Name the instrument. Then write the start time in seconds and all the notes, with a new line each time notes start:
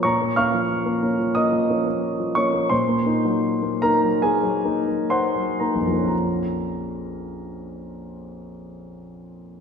grand piano
0.03 A#2 C#5 A#5 C#6
0.21 A#3
0.36 A#3 C#4 F5 C#6 F6
0.54 F3
0.86 A#3
1.03 A#3 C#4
1.19 F3
1.35 A#3 D#5 D#6
1.52 F3
1.70 A#3 C#4
1.86 A#3
2.20 F3
2.35 A#3 C#4 C#5 C#6
2.54 A#3
2.69 A#2 C5 C6
2.89 A#3
3.06 A#3 D#4
3.25 F#3
3.62 A#3
3.82 A#3 D#4 A#4 A#5
4.04 F#3
4.22 A#3 G#4 G#5
4.43 F#3
4.65 A#3 D#4
4.88 A#3
5.10 C5 F#5 C6
5.36 F#3
5.60 A#3 D#4 A#4 A#5
5.75 A#1
5.81 F2
5.87 F3 A#3
5.92 A#3
5.97 C#4
6.04 F4 A#5